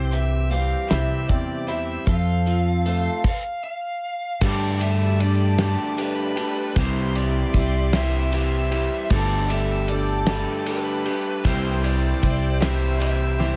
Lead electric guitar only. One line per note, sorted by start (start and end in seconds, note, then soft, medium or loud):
0.00 0.14 C5 medium
0.13 0.51 E5 medium
0.51 0.88 F5 medium
0.89 1.28 E5 medium
1.29 1.66 D5 medium
1.68 2.06 E5 medium
2.06 3.24 F5 medium
3.25 3.63 F5 medium
3.64 4.38 F5 medium
4.42 4.79 D5 medium
4.82 5.20 E5 medium
5.20 5.59 D5 medium
5.60 5.96 D5 medium
5.99 6.73 B4 medium
6.78 7.17 C5 medium
7.16 7.90 D5 medium
7.96 8.31 E5 medium
8.36 9.08 E5 loud
9.12 9.49 D5 medium
9.50 9.88 E5 medium
9.89 10.28 D5 medium
10.29 10.65 D5 medium
10.69 11.46 B4 medium
11.47 11.82 C5 medium
11.85 12.61 D5 medium
12.62 12.98 E5 medium
12.99 13.56 E5 medium